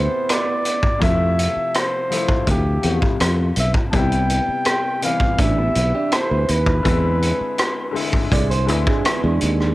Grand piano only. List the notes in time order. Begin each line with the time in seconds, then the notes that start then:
Already playing: C3 A3 B3 E4 G4
0.99 C3 F3 A3 E4
2.09 C3 F3 A3
2.13 E4
2.81 C3 F3 A3 G4
3.92 C3 G3 B3 E4
5.01 C3 E3 G3 B3
6.83 D3 G#3 C4 E4
7.91 D3 G#3 C4
7.96 E4
8.66 D3 G#3 C4 E4